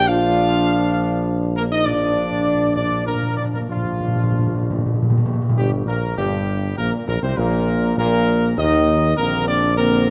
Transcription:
Already playing: tuba A#1
0.08 trombone section F3 D4, french horn section F4, trumpet section F5
1.57 french horn section A#3, trumpet section A#4
1.72 french horn section D#4, trumpet section D#5
1.86 timpani A#2, trombone section F3 D4, french horn section D4, trumpet section D5
1.94 timpani A#2
2.01 timpani A#2
2.09 timpani A#2
2.16 timpani A#2
2.24 timpani A#2
2.32 timpani A#2
2.39 timpani A#2
2.47 timpani A#2
2.54 timpani A#2
2.62 timpani A#2
2.69 timpani A#2
2.76 timpani A#2, french horn section D4, trumpet section D5
2.92 timpani A#2
2.99 timpani A#2
3.06 timpani A#2, trombone section F3 D4, french horn section A#3, trumpet section A#4
3.15 timpani A#2
3.22 timpani A#2
3.30 timpani A#2
3.37 timpani A#2, french horn section D4, trumpet section D5
3.45 timpani A#2
3.53 timpani A#2, french horn section A#3, trumpet section A#4
3.61 timpani A#2
3.68 tuba A#1, timpani A#2, trombone section F3 D4, french horn section F3, trumpet section F4
3.76 timpani A#2
3.84 timpani A#2
3.93 timpani A#2
4.00 timpani A#2
4.08 timpani A#2
4.16 timpani A#2
4.23 timpani A#2
4.31 timpani A#2
4.39 timpani A#2
4.47 timpani A#2
4.54 timpani A#2
4.62 timpani A#2
4.70 timpani A#2
4.78 timpani A#2
4.86 timpani A#2
4.94 timpani A#2
5.02 timpani A#2
5.10 timpani A#2
5.18 timpani A#2
5.26 timpani A#2
5.33 timpani A#2
5.42 timpani A#2
5.49 timpani A#2
5.56 tuba G1, trombone section G2, french horn section G3, trumpet section G4
5.86 tuba A#1, trombone section A#2, french horn section A#3, trumpet section A#4
6.16 tuba G1, trombone section G2, french horn section G3, trumpet section G4
6.77 tuba A#1, trombone section A#2, french horn section A#3, trumpet section A#4
7.07 tuba A#1, trombone section A#2, french horn section A#3, trumpet section A#4
7.23 tuba C2, trombone section C3, french horn section C4, trumpet section C5
7.37 tuba A#1, trombone section A#2, french horn section A#3, trumpet section A#4
7.97 tuba A#1, trombone section A#2, french horn section A#3, trumpet section A#4
8.57 tuba D#2, trombone section D#3, french horn section D#4, trumpet section D#5
9.17 tuba A#1, trombone section D3 C4, french horn section A#3, trumpet section A#4
9.47 french horn section D4, trumpet section D5
9.78 trombone section D3 C4, french horn section A#3, trumpet section A#4

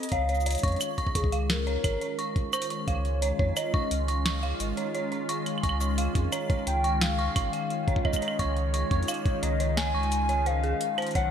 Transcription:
Already playing: synth texture D#5
0.03 closed hi-hat
0.09 soft synth lead F5, closed hi-hat
0.12 sub bass C#2, analog synth pad D#3 G#3 C#4 F4, synth bell C#5, kick, closed hi-hat
0.29 synth bell C#5, closed hi-hat, cabasa
0.35 cabasa
0.40 cabasa
0.46 soft synth lead C#5, synth bell C#5, closed hi-hat, cabasa
0.51 closed hi-hat, cabasa
0.55 closed hi-hat, cabasa
0.59 closed hi-hat
0.63 sub bass F2, synth bell C#6, kick, closed hi-hat
0.68 closed hi-hat
0.72 closed hi-hat
0.76 closed hi-hat
0.81 closed hi-hat, cabasa, claves
0.98 synth bell C#6, kick, closed hi-hat
1.07 kick
1.15 sub bass C#2, soft synth lead G#4, synth bell C#6, kick, closed hi-hat
1.24 kick
1.32 synth bell F5, closed hi-hat
1.49 soft synth lead A#4, snare, closed hi-hat
1.67 synth bell C#5, closed hi-hat
1.84 sub bass G#1, synth bell C#5, kick, closed hi-hat, claves
2.01 synth bell C#5, closed hi-hat
2.19 synth bell C#6, closed hi-hat
2.36 kick, closed hi-hat
2.53 soft synth lead C5, synth bell C#6, cabasa, claves
2.62 closed hi-hat
2.70 synth bell C#6, closed hi-hat
2.87 sub bass C#2, soft synth lead C#5, synth bell F5, kick, closed hi-hat
3.05 closed hi-hat
3.22 synth bell C#5, closed hi-hat
3.39 sub bass F2, synth bell C#5, kick
3.56 synth bell C#5, soft synth lead D#5, closed hi-hat, cabasa, claves
3.74 synth bell C#6, kick
3.91 sub bass C#2, closed hi-hat
4.08 synth bell C#6, closed hi-hat
4.26 synth bell C#6, snare, closed hi-hat
4.43 synth bell F5, closed hi-hat
4.60 sub bass G#1, closed hi-hat, cabasa
4.77 synth bell C#5, closed hi-hat
4.95 synth bell C#5, closed hi-hat
5.12 synth bell C#5, closed hi-hat
5.29 synth bell C#6, closed hi-hat
5.46 closed hi-hat, claves
5.58 claves
5.63 sub bass C#2, synth bell C#6, kick, closed hi-hat
5.69 claves
5.81 synth bell C#6, closed hi-hat, cabasa
5.98 synth bell F5, closed hi-hat
6.15 sub bass F2, kick, closed hi-hat
6.32 synth bell C#5, closed hi-hat, cabasa, claves
6.50 synth bell C#5, kick, closed hi-hat
6.67 sub bass C#2, synth bell C#5, soft synth lead G5, closed hi-hat
6.84 synth bell C#6, closed hi-hat
7.01 soft synth lead F5, snare, closed hi-hat
7.19 synth bell C#6, closed hi-hat
7.36 sub bass G#1, synth bell C#6, kick, closed hi-hat, claves
7.53 synth bell F5, closed hi-hat
7.70 closed hi-hat
7.88 synth bell C#5, kick, closed hi-hat
7.96 kick
8.05 synth bell C#5, soft synth lead D#5, kick, claves
8.13 kick, cabasa, claves
8.22 synth bell C#5, closed hi-hat
8.28 claves
8.39 sub bass C#2, soft synth lead C#5, synth bell C#6, kick, closed hi-hat
8.57 closed hi-hat
8.74 synth bell C#6, closed hi-hat
8.91 sub bass F2, synth bell C#6, kick, closed hi-hat
9.03 closed hi-hat
9.08 synth bell F5, closed hi-hat, cabasa, claves
9.14 closed hi-hat
9.26 kick, closed hi-hat
9.43 sub bass C#2, synth bell C#5, soft synth lead D#5, closed hi-hat
9.60 synth bell C#5, closed hi-hat
9.77 synth bell C#5, soft synth lead G#5, snare, closed hi-hat
9.95 sub bass C#2, synth bell C#6
10.03 closed hi-hat
10.12 closed hi-hat, cabasa
10.29 synth bell C#5, closed hi-hat
10.46 synth bell C5, soft synth lead F5, closed hi-hat
10.63 synth bell G#4, closed hi-hat
10.81 closed hi-hat
10.98 synth bell C5, closed hi-hat, claves
11.02 closed hi-hat
11.07 closed hi-hat
11.11 closed hi-hat
11.15 sub bass B1, analog synth pad F#3 B3 F#4, synth bell C#5, soft synth lead F#5, kick, closed hi-hat

